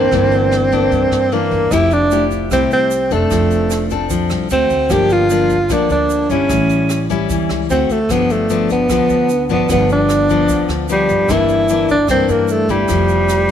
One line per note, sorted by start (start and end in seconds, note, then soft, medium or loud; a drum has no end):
0.00 0.10 G1 medium
0.00 0.10 G2 medium
0.00 1.34 C4 medium
0.11 0.87 G1 medium
0.11 0.90 G2 medium
0.11 0.69 E3 medium
0.11 0.69 A#3 medium
0.11 0.69 D4 medium
0.11 kick medium
0.11 cross-stick medium
0.11 closed hi-hat medium
0.32 closed hi-hat soft
0.52 cross-stick medium
0.52 closed hi-hat soft
0.71 1.28 E3 medium
0.71 1.28 A#3 medium
0.71 1.29 D4 medium
0.71 kick soft
0.71 closed hi-hat soft
0.91 1.10 G2 medium
0.91 1.70 G2 medium
0.91 kick medium
0.91 closed hi-hat medium
1.11 1.48 G2 medium
1.11 cross-stick medium
1.11 closed hi-hat soft
1.32 1.70 E3 medium
1.32 1.74 A#3 medium
1.32 1.70 A#3 medium
1.32 1.71 D4 medium
1.32 closed hi-hat soft
1.51 1.70 G1 medium
1.51 kick soft
1.51 closed hi-hat soft
1.71 2.47 F1 medium
1.71 2.50 F3 medium
1.71 1.97 A3 medium
1.71 1.94 E4 loud
1.71 1.98 E4 soft
1.71 1.98 G4 medium
1.71 kick medium
1.71 cross-stick medium
1.71 closed hi-hat medium
1.71 shaker medium
1.91 2.25 D4 medium
1.91 closed hi-hat soft
1.91 shaker soft
2.11 2.48 A3 medium
2.11 2.48 E4 medium
2.11 2.48 G4 medium
2.11 closed hi-hat soft
2.11 shaker medium
2.31 kick soft
2.31 closed hi-hat soft
2.31 shaker soft
2.51 2.69 C2 medium
2.51 3.29 C3 medium
2.51 2.91 A3 medium
2.51 2.70 C4 medium
2.51 2.91 E4 medium
2.51 2.91 G4 medium
2.51 kick medium
2.51 cross-stick medium
2.51 closed hi-hat medium
2.51 shaker medium
2.71 3.08 C2 medium
2.71 3.14 C4 medium
2.71 closed hi-hat soft
2.71 shaker soft
2.91 closed hi-hat soft
2.91 shaker medium
3.11 3.29 F1 medium
3.11 3.92 A3 medium
3.11 3.88 C4 medium
3.11 3.88 D4 medium
3.11 3.88 A4 medium
3.11 kick soft
3.11 closed hi-hat soft
3.11 shaker soft
3.31 4.06 F1 medium
3.31 4.09 F3 medium
3.31 kick medium
3.31 cross-stick medium
3.31 closed hi-hat medium
3.31 shaker medium
3.51 closed hi-hat soft
3.51 shaker soft
3.70 cross-stick medium
3.70 closed hi-hat soft
3.70 shaker medium
3.90 4.47 C4 medium
3.90 4.48 D4 medium
3.90 4.48 A4 medium
3.90 kick soft
3.90 closed hi-hat soft
3.90 shaker soft
4.10 4.29 F2 medium
4.10 4.48 F3 medium
4.10 kick medium
4.10 closed hi-hat medium
4.10 shaker medium
4.30 4.49 C2 medium
4.30 cross-stick medium
4.30 closed hi-hat soft
4.30 shaker soft
4.50 4.69 D2 loud
4.50 4.89 A3 medium
4.50 4.89 C4 medium
4.50 4.93 C4 medium
4.50 4.89 F#4 medium
4.50 closed hi-hat soft
4.50 shaker medium
4.70 4.89 D2 medium
4.70 kick soft
4.70 closed hi-hat soft
4.70 shaker soft
4.90 5.66 G1 loud
4.90 5.68 G2 medium
4.90 5.27 F3 medium
4.90 5.27 A#3 medium
4.90 5.28 D4 medium
4.90 5.14 G4 loud
4.90 kick medium
4.90 cross-stick medium
4.90 closed hi-hat medium
4.90 shaker medium
5.10 5.74 F4 loud
5.10 closed hi-hat soft
5.10 shaker soft
5.30 5.56 F3 medium
5.30 5.56 A#3 medium
5.30 5.56 D4 medium
5.30 closed hi-hat soft
5.30 shaker medium
5.50 kick soft
5.50 closed hi-hat soft
5.50 shaker soft
5.69 5.88 D2 medium
5.69 6.48 D3 medium
5.69 6.27 F3 medium
5.69 6.27 A#3 medium
5.69 6.27 D4 medium
5.69 5.91 D4 medium
5.69 kick medium
5.69 cross-stick medium
5.69 closed hi-hat medium
5.69 shaker medium
5.89 6.27 D2 medium
5.89 6.32 D4 medium
5.89 closed hi-hat soft
5.89 shaker soft
6.09 closed hi-hat soft
6.09 shaker medium
6.29 6.48 G1 medium
6.29 7.07 G3 medium
6.29 7.10 C#4 medium
6.29 7.07 C#4 medium
6.29 7.07 E4 medium
6.29 kick soft
6.29 closed hi-hat soft
6.29 shaker soft
6.49 7.26 A1 medium
6.49 7.28 A2 medium
6.49 kick medium
6.49 cross-stick medium
6.49 closed hi-hat soft
6.49 shaker medium
6.69 closed hi-hat soft
6.69 shaker soft
6.89 cross-stick medium
6.89 closed hi-hat soft
6.89 shaker medium
7.10 7.66 G3 medium
7.10 7.67 C#4 medium
7.10 7.67 E4 medium
7.10 kick soft
7.10 closed hi-hat soft
7.10 shaker soft
7.29 7.48 E2 medium
7.29 7.68 E3 medium
7.29 kick medium
7.29 closed hi-hat medium
7.29 shaker medium
7.49 7.68 C#2 medium
7.49 cross-stick medium
7.49 closed hi-hat soft
7.49 shaker soft
7.69 7.88 D2 medium
7.69 7.97 A3 medium
7.69 7.93 C4 medium
7.69 7.97 C4 medium
7.69 7.97 F#4 medium
7.69 closed hi-hat soft
7.69 shaker medium
7.89 8.08 D2 medium
7.89 8.13 A3 medium
7.89 kick soft
7.89 closed hi-hat soft
7.89 shaker soft
8.09 8.85 G1 medium
8.09 8.88 G2 medium
8.09 8.47 F3 medium
8.09 8.47 B3 soft
8.09 8.33 B3 medium
8.09 8.47 D4 medium
8.09 kick medium
8.09 cross-stick medium
8.09 closed hi-hat medium
8.09 shaker medium
8.30 8.71 A3 medium
8.30 closed hi-hat soft
8.30 shaker soft
8.49 8.86 F3 medium
8.49 8.86 B3 medium
8.49 8.87 D4 medium
8.49 closed hi-hat soft
8.49 shaker medium
8.69 9.46 B3 medium
8.69 kick soft
8.69 closed hi-hat soft
8.69 shaker soft
8.89 9.08 D2 medium
8.89 9.68 D3 medium
8.89 9.30 F3 medium
8.89 9.30 B3 medium
8.89 9.30 D4 medium
8.89 kick medium
8.89 cross-stick medium
8.89 closed hi-hat medium
8.89 shaker medium
9.09 9.46 D2 medium
9.09 closed hi-hat soft
9.09 shaker soft
9.29 closed hi-hat soft
9.29 shaker medium
9.49 9.68 G1 medium
9.49 9.66 F3 medium
9.49 9.67 B3 medium
9.49 9.69 B3 medium
9.49 9.67 D4 medium
9.49 kick soft
9.49 closed hi-hat soft
9.49 shaker soft
9.69 10.45 G1 loud
9.69 10.47 G2 medium
9.69 10.26 F3 medium
9.69 10.26 B3 medium
9.69 9.89 B3 medium
9.69 10.26 D4 medium
9.69 kick medium
9.69 cross-stick medium
9.69 closed hi-hat soft
9.69 shaker medium
9.89 10.66 D4 medium
9.89 closed hi-hat soft
9.89 shaker soft
10.09 cross-stick medium
10.09 closed hi-hat soft
10.09 shaker medium
10.29 10.86 F3 medium
10.29 10.87 B3 medium
10.29 10.87 D4 medium
10.29 kick soft
10.29 closed hi-hat soft
10.29 shaker soft
10.49 10.68 D2 medium
10.49 11.27 D3 medium
10.49 kick medium
10.49 closed hi-hat medium
10.49 shaker medium
10.68 11.06 D2 medium
10.68 cross-stick medium
10.68 closed hi-hat soft
10.68 shaker soft
10.89 11.27 F3 medium
10.89 11.33 G3 medium
10.89 11.28 B3 medium
10.89 11.28 D4 medium
10.89 closed hi-hat soft
10.89 shaker medium
11.09 11.27 G1 medium
11.09 kick soft
11.09 closed hi-hat soft
11.09 shaker soft
11.29 12.05 G1 medium
11.29 12.07 G2 medium
11.29 11.66 E3 medium
11.29 11.66 A#3 medium
11.29 11.66 D4 medium
11.29 11.90 E4 loud
11.29 kick medium
11.29 cross-stick medium
11.29 closed hi-hat medium
11.29 shaker medium
11.49 closed hi-hat soft
11.49 shaker soft
11.69 11.95 E3 medium
11.69 11.95 A#3 medium
11.69 11.95 D4 medium
11.69 closed hi-hat soft
11.69 shaker medium
11.89 12.09 D4 medium
11.89 kick soft
11.89 closed hi-hat soft
11.89 shaker soft
12.08 12.27 G2 medium
12.08 12.87 G2 medium
12.08 12.66 E3 medium
12.08 12.66 A#3 medium
12.08 12.32 C4 medium
12.08 12.66 D4 medium
12.08 kick medium
12.08 cross-stick medium
12.08 closed hi-hat medium
12.08 shaker medium
12.28 12.66 G2 medium
12.28 12.53 A#3 medium
12.28 closed hi-hat soft
12.28 shaker soft
12.48 12.72 A3 medium
12.48 closed hi-hat soft
12.48 shaker medium
12.68 12.87 G1 medium
12.68 13.51 G3 medium
12.68 13.46 A3 medium
12.68 13.46 E4 medium
12.68 13.46 G4 medium
12.68 kick soft
12.68 closed hi-hat soft
12.68 shaker soft
12.88 13.51 F1 medium
12.88 13.51 F3 medium
12.88 kick medium
12.88 cross-stick medium
12.88 closed hi-hat medium
12.88 shaker medium
13.08 closed hi-hat soft
13.08 shaker soft
13.29 cross-stick medium
13.29 closed hi-hat soft
13.29 shaker medium